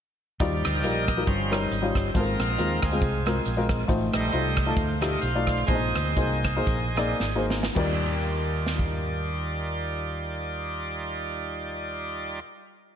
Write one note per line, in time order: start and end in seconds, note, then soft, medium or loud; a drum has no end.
0.40 0.61 D#2 medium
0.40 1.05 D#3 medium
0.40 1.05 F3 soft
0.40 1.05 G3 soft
0.40 0.74 G3 medium
0.40 0.74 D#4 medium
0.40 0.74 F4 medium
0.40 1.06 D5 soft
0.40 0.75 D5 medium
0.40 kick loud
0.40 closed hi-hat medium
0.64 0.85 D2 medium
0.64 1.24 G4 medium
0.64 1.24 A#4 medium
0.64 1.29 D#5 loud
0.64 cross-stick medium
0.64 closed hi-hat medium
0.83 1.22 A#1 medium
0.83 1.11 G3 medium
0.83 1.11 D#4 medium
0.83 1.11 F4 medium
0.83 1.11 A#4 medium
0.83 closed hi-hat medium
1.08 kick medium
1.08 cross-stick loud
1.08 closed hi-hat medium
1.17 1.27 G3 medium
1.17 1.28 D#4 medium
1.17 1.28 F4 medium
1.17 1.28 A#4 medium
1.27 1.65 G1 medium
1.27 1.92 G2 medium
1.27 1.58 F3 soft
1.27 1.58 G3 soft
1.27 1.58 C#4 medium
1.27 2.11 D#4 medium
1.27 2.08 C5 medium
1.27 kick loud
1.27 closed hi-hat medium
1.51 1.74 G3 medium
1.51 1.74 C#4 medium
1.51 1.74 D#4 medium
1.51 1.74 A#4 medium
1.51 cross-stick medium
1.51 closed hi-hat medium
1.71 1.92 G#1 medium
1.71 closed hi-hat medium
1.82 2.07 G3 medium
1.82 2.07 C#4 medium
1.82 2.07 D#4 medium
1.82 2.07 F4 medium
1.95 2.12 G1 medium
1.95 kick medium
1.95 cross-stick medium
1.95 closed hi-hat medium
2.09 2.15 C5 medium
2.14 2.36 G#1 medium
2.14 2.79 G#2 medium
2.14 2.80 F3 soft
2.14 2.49 G#3 medium
2.14 2.81 A#3 soft
2.14 2.49 C4 medium
2.14 2.80 C4 medium
2.14 3.00 D#4 medium
2.14 2.49 F4 medium
2.14 2.82 F4 medium
2.14 2.21 A4 medium
2.14 2.86 A#4 medium
2.14 kick medium
2.14 closed hi-hat medium
2.20 2.51 A#4 medium
2.40 2.56 A#1 medium
2.40 cross-stick medium
2.40 closed hi-hat medium
2.58 2.80 D#2 medium
2.58 2.85 G#3 medium
2.58 2.85 C4 medium
2.58 2.85 F4 medium
2.58 2.85 A#4 medium
2.58 closed hi-hat medium
2.82 3.00 D2 medium
2.82 3.67 C4 medium
2.82 3.67 F4 soft
2.82 3.67 G#4 medium
2.82 kick medium
2.82 cross-stick loud
2.82 closed hi-hat medium
2.92 3.17 G#3 medium
2.92 3.17 C4 medium
2.92 3.18 F4 medium
2.92 3.18 G#4 medium
3.02 3.39 C2 medium
3.02 kick loud
3.02 closed hi-hat medium
3.26 3.49 G#3 medium
3.26 3.49 C4 medium
3.26 3.49 F4 medium
3.26 3.49 A#4 medium
3.26 cross-stick medium
3.26 closed hi-hat medium
3.45 3.83 A#1 medium
3.45 closed hi-hat medium
3.57 3.82 G#3 medium
3.57 3.82 C4 medium
3.57 3.82 F4 medium
3.57 3.82 A#4 medium
3.69 kick medium
3.69 cross-stick medium
3.69 closed hi-hat medium
3.88 4.10 A1 medium
3.88 4.53 A2 medium
3.88 4.22 A3 medium
3.88 4.23 D#4 medium
3.88 4.23 F4 medium
3.88 4.23 C5 medium
3.88 kick loud
3.88 closed hi-hat medium
4.13 4.31 A#1 medium
4.13 4.74 G3 soft
4.13 4.74 A3 soft
4.13 4.74 D#4 medium
4.13 4.76 C5 medium
4.13 4.73 D#5 medium
4.13 cross-stick medium
4.13 closed hi-hat medium
4.32 4.71 C2 medium
4.32 4.60 A3 medium
4.32 4.60 D#4 medium
4.32 4.60 F4 medium
4.32 4.60 C5 medium
4.32 closed hi-hat medium
4.57 kick medium
4.57 cross-stick loud
4.57 closed hi-hat medium
4.66 4.92 A3 medium
4.66 4.92 D#4 medium
4.66 4.92 F4 medium
4.66 4.93 A4 medium
4.71 4.77 D5 medium
4.77 5.15 D2 medium
4.77 5.00 D#4 medium
4.77 5.65 F4 medium
4.77 5.10 C5 medium
4.77 kick loud
4.77 closed hi-hat medium
5.01 5.20 G3 soft
5.01 5.20 A3 soft
5.01 5.25 A3 medium
5.01 5.20 D#4 soft
5.01 5.25 D#4 medium
5.01 5.25 F4 medium
5.01 5.26 G4 medium
5.01 cross-stick medium
5.01 closed hi-hat medium
5.12 5.23 D#5 medium
5.21 5.62 B1 medium
5.21 5.65 C5 medium
5.21 5.70 F5 medium
5.21 closed hi-hat medium
5.35 5.61 A3 medium
5.35 5.61 D#4 medium
5.35 5.61 F4 medium
5.35 5.61 D5 medium
5.47 kick medium
5.47 cross-stick medium
5.47 closed hi-hat medium
5.66 5.92 A#1 medium
5.66 6.41 A#2 medium
5.66 6.40 G#3 soft
5.66 6.06 A#3 medium
5.66 6.40 C4 soft
5.66 5.76 D4 soft
5.66 6.41 D#4 soft
5.66 7.46 G#4 medium
5.66 6.06 G#4 medium
5.66 7.46 C5 medium
5.66 6.07 C5 medium
5.66 7.46 D#5 medium
5.66 kick medium
5.66 closed hi-hat medium
5.75 6.09 D#4 medium
5.96 6.14 D2 medium
5.96 cross-stick medium
5.96 closed hi-hat medium
6.16 6.60 C2 medium
6.16 6.47 A#3 medium
6.16 6.48 D#4 medium
6.16 6.48 G#4 medium
6.16 6.48 C5 medium
6.16 kick medium
6.16 closed hi-hat medium
6.44 kick medium
6.44 cross-stick loud
6.44 closed hi-hat medium
6.56 6.85 A#3 medium
6.56 6.86 D#4 medium
6.56 6.86 G#4 medium
6.56 6.86 C5 medium
6.67 7.12 A#1 medium
6.67 kick loud
6.67 closed hi-hat medium
6.95 7.17 G#3 soft
6.95 7.24 A#3 medium
6.95 7.17 C4 soft
6.95 7.18 D#4 soft
6.95 7.24 D#4 medium
6.95 7.24 G#4 medium
6.95 7.25 D5 medium
6.95 cross-stick medium
6.95 closed hi-hat medium
7.20 7.68 G#1 medium
7.20 snare soft
7.35 7.67 A#3 medium
7.35 7.67 D#4 medium
7.35 7.67 G#4 medium
7.35 7.67 C5 medium
7.50 snare medium
7.63 snare medium
7.75 12.39 D#2 medium
7.75 12.40 D#2 medium
7.75 12.37 G3 medium
7.75 12.40 G3 medium
7.75 12.39 D#4 medium
7.75 12.40 D#4 medium
7.75 12.40 F4 medium
7.75 12.41 F4 medium
7.75 12.39 D5 medium
7.75 kick medium
7.75 crash medium
7.79 12.42 D5 medium
8.67 snare soft
8.79 kick medium